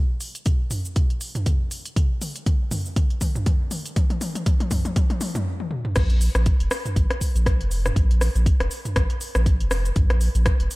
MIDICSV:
0, 0, Header, 1, 3, 480
1, 0, Start_track
1, 0, Tempo, 500000
1, 1883, Time_signature, 4, 2, 24, 8
1, 10327, End_track
2, 0, Start_track
2, 0, Title_t, "Analog synth bass"
2, 0, Program_c, 0, 38
2, 5725, Note_on_c, 0, 34, 100
2, 6038, Note_off_c, 0, 34, 0
2, 6097, Note_on_c, 0, 34, 100
2, 6260, Note_off_c, 0, 34, 0
2, 6339, Note_on_c, 0, 29, 79
2, 6413, Note_off_c, 0, 29, 0
2, 6685, Note_on_c, 0, 34, 89
2, 6782, Note_off_c, 0, 34, 0
2, 7059, Note_on_c, 0, 34, 91
2, 7302, Note_on_c, 0, 29, 86
2, 7316, Note_off_c, 0, 34, 0
2, 7597, Note_off_c, 0, 29, 0
2, 7646, Note_on_c, 0, 34, 101
2, 7958, Note_off_c, 0, 34, 0
2, 8020, Note_on_c, 0, 34, 100
2, 8182, Note_off_c, 0, 34, 0
2, 8259, Note_on_c, 0, 29, 80
2, 8333, Note_off_c, 0, 29, 0
2, 8604, Note_on_c, 0, 34, 92
2, 8701, Note_off_c, 0, 34, 0
2, 8980, Note_on_c, 0, 34, 90
2, 9218, Note_on_c, 0, 29, 94
2, 9233, Note_off_c, 0, 34, 0
2, 9515, Note_off_c, 0, 29, 0
2, 9564, Note_on_c, 0, 34, 99
2, 9878, Note_off_c, 0, 34, 0
2, 9937, Note_on_c, 0, 34, 105
2, 10100, Note_off_c, 0, 34, 0
2, 10176, Note_on_c, 0, 29, 82
2, 10252, Note_off_c, 0, 29, 0
2, 10327, End_track
3, 0, Start_track
3, 0, Title_t, "Drums"
3, 197, Note_on_c, 9, 46, 87
3, 198, Note_on_c, 9, 82, 88
3, 293, Note_off_c, 9, 46, 0
3, 294, Note_off_c, 9, 82, 0
3, 336, Note_on_c, 9, 42, 46
3, 337, Note_on_c, 9, 82, 50
3, 432, Note_off_c, 9, 42, 0
3, 433, Note_off_c, 9, 82, 0
3, 439, Note_on_c, 9, 42, 69
3, 439, Note_on_c, 9, 47, 63
3, 439, Note_on_c, 9, 82, 39
3, 442, Note_on_c, 9, 36, 116
3, 535, Note_off_c, 9, 42, 0
3, 535, Note_off_c, 9, 47, 0
3, 535, Note_off_c, 9, 82, 0
3, 538, Note_off_c, 9, 36, 0
3, 679, Note_on_c, 9, 45, 80
3, 679, Note_on_c, 9, 46, 86
3, 679, Note_on_c, 9, 82, 87
3, 775, Note_off_c, 9, 45, 0
3, 775, Note_off_c, 9, 46, 0
3, 775, Note_off_c, 9, 82, 0
3, 817, Note_on_c, 9, 82, 53
3, 913, Note_off_c, 9, 82, 0
3, 921, Note_on_c, 9, 42, 71
3, 921, Note_on_c, 9, 47, 65
3, 922, Note_on_c, 9, 82, 37
3, 923, Note_on_c, 9, 36, 109
3, 1017, Note_off_c, 9, 42, 0
3, 1017, Note_off_c, 9, 47, 0
3, 1018, Note_off_c, 9, 82, 0
3, 1019, Note_off_c, 9, 36, 0
3, 1058, Note_on_c, 9, 42, 33
3, 1154, Note_off_c, 9, 42, 0
3, 1160, Note_on_c, 9, 46, 92
3, 1161, Note_on_c, 9, 82, 91
3, 1256, Note_off_c, 9, 46, 0
3, 1257, Note_off_c, 9, 82, 0
3, 1298, Note_on_c, 9, 42, 33
3, 1298, Note_on_c, 9, 45, 91
3, 1299, Note_on_c, 9, 82, 48
3, 1394, Note_off_c, 9, 42, 0
3, 1394, Note_off_c, 9, 45, 0
3, 1395, Note_off_c, 9, 82, 0
3, 1403, Note_on_c, 9, 42, 70
3, 1403, Note_on_c, 9, 47, 69
3, 1404, Note_on_c, 9, 36, 108
3, 1404, Note_on_c, 9, 82, 38
3, 1499, Note_off_c, 9, 42, 0
3, 1499, Note_off_c, 9, 47, 0
3, 1500, Note_off_c, 9, 36, 0
3, 1500, Note_off_c, 9, 82, 0
3, 1643, Note_on_c, 9, 46, 86
3, 1644, Note_on_c, 9, 82, 83
3, 1739, Note_off_c, 9, 46, 0
3, 1740, Note_off_c, 9, 82, 0
3, 1780, Note_on_c, 9, 42, 49
3, 1781, Note_on_c, 9, 82, 51
3, 1876, Note_off_c, 9, 42, 0
3, 1877, Note_off_c, 9, 82, 0
3, 1886, Note_on_c, 9, 36, 115
3, 1887, Note_on_c, 9, 42, 70
3, 1887, Note_on_c, 9, 47, 70
3, 1888, Note_on_c, 9, 82, 35
3, 1982, Note_off_c, 9, 36, 0
3, 1983, Note_off_c, 9, 42, 0
3, 1983, Note_off_c, 9, 47, 0
3, 1984, Note_off_c, 9, 82, 0
3, 2127, Note_on_c, 9, 46, 91
3, 2127, Note_on_c, 9, 47, 72
3, 2128, Note_on_c, 9, 82, 86
3, 2223, Note_off_c, 9, 46, 0
3, 2223, Note_off_c, 9, 47, 0
3, 2224, Note_off_c, 9, 82, 0
3, 2262, Note_on_c, 9, 42, 48
3, 2262, Note_on_c, 9, 82, 48
3, 2358, Note_off_c, 9, 42, 0
3, 2358, Note_off_c, 9, 82, 0
3, 2365, Note_on_c, 9, 42, 73
3, 2365, Note_on_c, 9, 47, 80
3, 2366, Note_on_c, 9, 36, 117
3, 2366, Note_on_c, 9, 82, 38
3, 2461, Note_off_c, 9, 42, 0
3, 2461, Note_off_c, 9, 47, 0
3, 2462, Note_off_c, 9, 36, 0
3, 2462, Note_off_c, 9, 82, 0
3, 2605, Note_on_c, 9, 45, 78
3, 2605, Note_on_c, 9, 46, 90
3, 2605, Note_on_c, 9, 47, 78
3, 2606, Note_on_c, 9, 82, 89
3, 2701, Note_off_c, 9, 45, 0
3, 2701, Note_off_c, 9, 46, 0
3, 2701, Note_off_c, 9, 47, 0
3, 2702, Note_off_c, 9, 82, 0
3, 2742, Note_on_c, 9, 82, 50
3, 2838, Note_off_c, 9, 82, 0
3, 2845, Note_on_c, 9, 42, 69
3, 2845, Note_on_c, 9, 47, 82
3, 2846, Note_on_c, 9, 36, 114
3, 2846, Note_on_c, 9, 82, 38
3, 2941, Note_off_c, 9, 42, 0
3, 2941, Note_off_c, 9, 47, 0
3, 2942, Note_off_c, 9, 36, 0
3, 2942, Note_off_c, 9, 82, 0
3, 2980, Note_on_c, 9, 42, 34
3, 3076, Note_off_c, 9, 42, 0
3, 3082, Note_on_c, 9, 46, 94
3, 3082, Note_on_c, 9, 47, 87
3, 3083, Note_on_c, 9, 82, 93
3, 3086, Note_on_c, 9, 36, 57
3, 3178, Note_off_c, 9, 46, 0
3, 3178, Note_off_c, 9, 47, 0
3, 3179, Note_off_c, 9, 82, 0
3, 3182, Note_off_c, 9, 36, 0
3, 3221, Note_on_c, 9, 45, 89
3, 3222, Note_on_c, 9, 82, 50
3, 3317, Note_off_c, 9, 45, 0
3, 3318, Note_off_c, 9, 82, 0
3, 3324, Note_on_c, 9, 42, 68
3, 3324, Note_on_c, 9, 47, 86
3, 3324, Note_on_c, 9, 82, 37
3, 3326, Note_on_c, 9, 36, 105
3, 3420, Note_off_c, 9, 42, 0
3, 3420, Note_off_c, 9, 47, 0
3, 3420, Note_off_c, 9, 82, 0
3, 3422, Note_off_c, 9, 36, 0
3, 3562, Note_on_c, 9, 46, 91
3, 3562, Note_on_c, 9, 47, 83
3, 3563, Note_on_c, 9, 82, 86
3, 3658, Note_off_c, 9, 46, 0
3, 3658, Note_off_c, 9, 47, 0
3, 3659, Note_off_c, 9, 82, 0
3, 3701, Note_on_c, 9, 42, 47
3, 3702, Note_on_c, 9, 82, 53
3, 3797, Note_off_c, 9, 42, 0
3, 3798, Note_off_c, 9, 82, 0
3, 3804, Note_on_c, 9, 42, 66
3, 3804, Note_on_c, 9, 47, 91
3, 3805, Note_on_c, 9, 36, 115
3, 3805, Note_on_c, 9, 82, 36
3, 3900, Note_off_c, 9, 42, 0
3, 3900, Note_off_c, 9, 47, 0
3, 3901, Note_off_c, 9, 36, 0
3, 3901, Note_off_c, 9, 82, 0
3, 3938, Note_on_c, 9, 42, 34
3, 3938, Note_on_c, 9, 47, 84
3, 4034, Note_off_c, 9, 42, 0
3, 4034, Note_off_c, 9, 47, 0
3, 4043, Note_on_c, 9, 46, 94
3, 4043, Note_on_c, 9, 47, 93
3, 4043, Note_on_c, 9, 82, 83
3, 4139, Note_off_c, 9, 46, 0
3, 4139, Note_off_c, 9, 47, 0
3, 4139, Note_off_c, 9, 82, 0
3, 4180, Note_on_c, 9, 42, 45
3, 4180, Note_on_c, 9, 47, 80
3, 4181, Note_on_c, 9, 82, 50
3, 4276, Note_off_c, 9, 42, 0
3, 4276, Note_off_c, 9, 47, 0
3, 4277, Note_off_c, 9, 82, 0
3, 4283, Note_on_c, 9, 42, 73
3, 4283, Note_on_c, 9, 47, 100
3, 4284, Note_on_c, 9, 82, 39
3, 4285, Note_on_c, 9, 36, 117
3, 4379, Note_off_c, 9, 42, 0
3, 4379, Note_off_c, 9, 47, 0
3, 4380, Note_off_c, 9, 82, 0
3, 4381, Note_off_c, 9, 36, 0
3, 4419, Note_on_c, 9, 42, 33
3, 4419, Note_on_c, 9, 47, 86
3, 4515, Note_off_c, 9, 42, 0
3, 4515, Note_off_c, 9, 47, 0
3, 4520, Note_on_c, 9, 45, 75
3, 4520, Note_on_c, 9, 46, 100
3, 4520, Note_on_c, 9, 47, 103
3, 4521, Note_on_c, 9, 82, 89
3, 4525, Note_on_c, 9, 36, 62
3, 4616, Note_off_c, 9, 45, 0
3, 4616, Note_off_c, 9, 46, 0
3, 4616, Note_off_c, 9, 47, 0
3, 4617, Note_off_c, 9, 82, 0
3, 4621, Note_off_c, 9, 36, 0
3, 4657, Note_on_c, 9, 42, 33
3, 4657, Note_on_c, 9, 47, 89
3, 4658, Note_on_c, 9, 82, 49
3, 4753, Note_off_c, 9, 42, 0
3, 4753, Note_off_c, 9, 47, 0
3, 4754, Note_off_c, 9, 82, 0
3, 4762, Note_on_c, 9, 42, 69
3, 4762, Note_on_c, 9, 47, 99
3, 4763, Note_on_c, 9, 82, 38
3, 4764, Note_on_c, 9, 36, 116
3, 4858, Note_off_c, 9, 42, 0
3, 4858, Note_off_c, 9, 47, 0
3, 4859, Note_off_c, 9, 82, 0
3, 4860, Note_off_c, 9, 36, 0
3, 4897, Note_on_c, 9, 42, 33
3, 4897, Note_on_c, 9, 47, 92
3, 4993, Note_off_c, 9, 42, 0
3, 4993, Note_off_c, 9, 47, 0
3, 5000, Note_on_c, 9, 46, 101
3, 5000, Note_on_c, 9, 47, 107
3, 5001, Note_on_c, 9, 82, 94
3, 5096, Note_off_c, 9, 46, 0
3, 5096, Note_off_c, 9, 47, 0
3, 5097, Note_off_c, 9, 82, 0
3, 5138, Note_on_c, 9, 42, 31
3, 5138, Note_on_c, 9, 45, 88
3, 5138, Note_on_c, 9, 47, 94
3, 5138, Note_on_c, 9, 82, 53
3, 5234, Note_off_c, 9, 42, 0
3, 5234, Note_off_c, 9, 45, 0
3, 5234, Note_off_c, 9, 47, 0
3, 5234, Note_off_c, 9, 82, 0
3, 5378, Note_on_c, 9, 48, 55
3, 5474, Note_off_c, 9, 48, 0
3, 5479, Note_on_c, 9, 47, 76
3, 5575, Note_off_c, 9, 47, 0
3, 5615, Note_on_c, 9, 45, 85
3, 5711, Note_off_c, 9, 45, 0
3, 5719, Note_on_c, 9, 37, 92
3, 5719, Note_on_c, 9, 42, 66
3, 5719, Note_on_c, 9, 45, 77
3, 5719, Note_on_c, 9, 49, 107
3, 5719, Note_on_c, 9, 82, 40
3, 5724, Note_on_c, 9, 36, 120
3, 5815, Note_off_c, 9, 37, 0
3, 5815, Note_off_c, 9, 42, 0
3, 5815, Note_off_c, 9, 45, 0
3, 5815, Note_off_c, 9, 49, 0
3, 5815, Note_off_c, 9, 82, 0
3, 5820, Note_off_c, 9, 36, 0
3, 5854, Note_on_c, 9, 42, 46
3, 5950, Note_off_c, 9, 42, 0
3, 5961, Note_on_c, 9, 46, 96
3, 5962, Note_on_c, 9, 82, 88
3, 6057, Note_off_c, 9, 46, 0
3, 6058, Note_off_c, 9, 82, 0
3, 6096, Note_on_c, 9, 37, 82
3, 6096, Note_on_c, 9, 42, 31
3, 6097, Note_on_c, 9, 82, 55
3, 6192, Note_off_c, 9, 37, 0
3, 6192, Note_off_c, 9, 42, 0
3, 6193, Note_off_c, 9, 82, 0
3, 6200, Note_on_c, 9, 42, 71
3, 6201, Note_on_c, 9, 82, 41
3, 6204, Note_on_c, 9, 36, 122
3, 6296, Note_off_c, 9, 42, 0
3, 6297, Note_off_c, 9, 82, 0
3, 6300, Note_off_c, 9, 36, 0
3, 6339, Note_on_c, 9, 42, 46
3, 6435, Note_off_c, 9, 42, 0
3, 6442, Note_on_c, 9, 37, 98
3, 6442, Note_on_c, 9, 46, 82
3, 6443, Note_on_c, 9, 82, 94
3, 6538, Note_off_c, 9, 37, 0
3, 6538, Note_off_c, 9, 46, 0
3, 6539, Note_off_c, 9, 82, 0
3, 6581, Note_on_c, 9, 42, 30
3, 6581, Note_on_c, 9, 45, 80
3, 6582, Note_on_c, 9, 82, 53
3, 6677, Note_off_c, 9, 42, 0
3, 6677, Note_off_c, 9, 45, 0
3, 6678, Note_off_c, 9, 82, 0
3, 6684, Note_on_c, 9, 36, 111
3, 6685, Note_on_c, 9, 42, 67
3, 6686, Note_on_c, 9, 82, 39
3, 6780, Note_off_c, 9, 36, 0
3, 6781, Note_off_c, 9, 42, 0
3, 6782, Note_off_c, 9, 82, 0
3, 6821, Note_on_c, 9, 37, 85
3, 6821, Note_on_c, 9, 42, 45
3, 6917, Note_off_c, 9, 37, 0
3, 6917, Note_off_c, 9, 42, 0
3, 6924, Note_on_c, 9, 36, 58
3, 6924, Note_on_c, 9, 46, 96
3, 6925, Note_on_c, 9, 82, 94
3, 7020, Note_off_c, 9, 36, 0
3, 7020, Note_off_c, 9, 46, 0
3, 7021, Note_off_c, 9, 82, 0
3, 7063, Note_on_c, 9, 42, 31
3, 7063, Note_on_c, 9, 82, 50
3, 7159, Note_off_c, 9, 42, 0
3, 7159, Note_off_c, 9, 82, 0
3, 7164, Note_on_c, 9, 36, 117
3, 7165, Note_on_c, 9, 37, 91
3, 7165, Note_on_c, 9, 42, 66
3, 7166, Note_on_c, 9, 82, 39
3, 7260, Note_off_c, 9, 36, 0
3, 7261, Note_off_c, 9, 37, 0
3, 7261, Note_off_c, 9, 42, 0
3, 7262, Note_off_c, 9, 82, 0
3, 7302, Note_on_c, 9, 42, 46
3, 7398, Note_off_c, 9, 42, 0
3, 7404, Note_on_c, 9, 46, 82
3, 7405, Note_on_c, 9, 82, 93
3, 7500, Note_off_c, 9, 46, 0
3, 7501, Note_off_c, 9, 82, 0
3, 7542, Note_on_c, 9, 37, 84
3, 7542, Note_on_c, 9, 42, 32
3, 7542, Note_on_c, 9, 45, 89
3, 7543, Note_on_c, 9, 82, 55
3, 7638, Note_off_c, 9, 37, 0
3, 7638, Note_off_c, 9, 42, 0
3, 7638, Note_off_c, 9, 45, 0
3, 7639, Note_off_c, 9, 82, 0
3, 7644, Note_on_c, 9, 36, 127
3, 7646, Note_on_c, 9, 42, 63
3, 7647, Note_on_c, 9, 82, 40
3, 7740, Note_off_c, 9, 36, 0
3, 7742, Note_off_c, 9, 42, 0
3, 7743, Note_off_c, 9, 82, 0
3, 7784, Note_on_c, 9, 42, 44
3, 7880, Note_off_c, 9, 42, 0
3, 7884, Note_on_c, 9, 37, 90
3, 7884, Note_on_c, 9, 46, 92
3, 7885, Note_on_c, 9, 82, 90
3, 7980, Note_off_c, 9, 37, 0
3, 7980, Note_off_c, 9, 46, 0
3, 7981, Note_off_c, 9, 82, 0
3, 8021, Note_on_c, 9, 42, 31
3, 8022, Note_on_c, 9, 82, 55
3, 8117, Note_off_c, 9, 42, 0
3, 8118, Note_off_c, 9, 82, 0
3, 8123, Note_on_c, 9, 36, 124
3, 8124, Note_on_c, 9, 42, 68
3, 8124, Note_on_c, 9, 82, 43
3, 8219, Note_off_c, 9, 36, 0
3, 8220, Note_off_c, 9, 42, 0
3, 8220, Note_off_c, 9, 82, 0
3, 8259, Note_on_c, 9, 37, 82
3, 8259, Note_on_c, 9, 42, 45
3, 8355, Note_off_c, 9, 37, 0
3, 8355, Note_off_c, 9, 42, 0
3, 8361, Note_on_c, 9, 46, 82
3, 8362, Note_on_c, 9, 82, 97
3, 8457, Note_off_c, 9, 46, 0
3, 8458, Note_off_c, 9, 82, 0
3, 8499, Note_on_c, 9, 42, 32
3, 8499, Note_on_c, 9, 45, 77
3, 8500, Note_on_c, 9, 82, 55
3, 8595, Note_off_c, 9, 42, 0
3, 8595, Note_off_c, 9, 45, 0
3, 8596, Note_off_c, 9, 82, 0
3, 8602, Note_on_c, 9, 37, 96
3, 8602, Note_on_c, 9, 42, 67
3, 8603, Note_on_c, 9, 82, 40
3, 8604, Note_on_c, 9, 36, 116
3, 8698, Note_off_c, 9, 37, 0
3, 8698, Note_off_c, 9, 42, 0
3, 8699, Note_off_c, 9, 82, 0
3, 8700, Note_off_c, 9, 36, 0
3, 8735, Note_on_c, 9, 42, 44
3, 8831, Note_off_c, 9, 42, 0
3, 8841, Note_on_c, 9, 46, 90
3, 8842, Note_on_c, 9, 82, 98
3, 8937, Note_off_c, 9, 46, 0
3, 8938, Note_off_c, 9, 82, 0
3, 8976, Note_on_c, 9, 37, 86
3, 8976, Note_on_c, 9, 42, 31
3, 8977, Note_on_c, 9, 82, 56
3, 9072, Note_off_c, 9, 37, 0
3, 9072, Note_off_c, 9, 42, 0
3, 9073, Note_off_c, 9, 82, 0
3, 9083, Note_on_c, 9, 36, 118
3, 9083, Note_on_c, 9, 42, 65
3, 9084, Note_on_c, 9, 82, 39
3, 9179, Note_off_c, 9, 36, 0
3, 9179, Note_off_c, 9, 42, 0
3, 9180, Note_off_c, 9, 82, 0
3, 9220, Note_on_c, 9, 42, 45
3, 9316, Note_off_c, 9, 42, 0
3, 9321, Note_on_c, 9, 37, 98
3, 9321, Note_on_c, 9, 46, 81
3, 9322, Note_on_c, 9, 82, 92
3, 9417, Note_off_c, 9, 37, 0
3, 9417, Note_off_c, 9, 46, 0
3, 9418, Note_off_c, 9, 82, 0
3, 9459, Note_on_c, 9, 42, 31
3, 9460, Note_on_c, 9, 82, 57
3, 9555, Note_off_c, 9, 42, 0
3, 9556, Note_off_c, 9, 82, 0
3, 9560, Note_on_c, 9, 42, 61
3, 9560, Note_on_c, 9, 45, 82
3, 9561, Note_on_c, 9, 82, 41
3, 9563, Note_on_c, 9, 36, 124
3, 9656, Note_off_c, 9, 42, 0
3, 9656, Note_off_c, 9, 45, 0
3, 9657, Note_off_c, 9, 82, 0
3, 9659, Note_off_c, 9, 36, 0
3, 9697, Note_on_c, 9, 37, 82
3, 9697, Note_on_c, 9, 42, 41
3, 9793, Note_off_c, 9, 37, 0
3, 9793, Note_off_c, 9, 42, 0
3, 9800, Note_on_c, 9, 46, 88
3, 9801, Note_on_c, 9, 82, 93
3, 9896, Note_off_c, 9, 46, 0
3, 9897, Note_off_c, 9, 82, 0
3, 9936, Note_on_c, 9, 42, 29
3, 9937, Note_on_c, 9, 82, 53
3, 10032, Note_off_c, 9, 42, 0
3, 10033, Note_off_c, 9, 82, 0
3, 10038, Note_on_c, 9, 37, 96
3, 10038, Note_on_c, 9, 42, 66
3, 10039, Note_on_c, 9, 82, 43
3, 10042, Note_on_c, 9, 36, 127
3, 10134, Note_off_c, 9, 37, 0
3, 10134, Note_off_c, 9, 42, 0
3, 10135, Note_off_c, 9, 82, 0
3, 10138, Note_off_c, 9, 36, 0
3, 10175, Note_on_c, 9, 42, 43
3, 10271, Note_off_c, 9, 42, 0
3, 10279, Note_on_c, 9, 46, 79
3, 10280, Note_on_c, 9, 82, 99
3, 10327, Note_off_c, 9, 46, 0
3, 10327, Note_off_c, 9, 82, 0
3, 10327, End_track
0, 0, End_of_file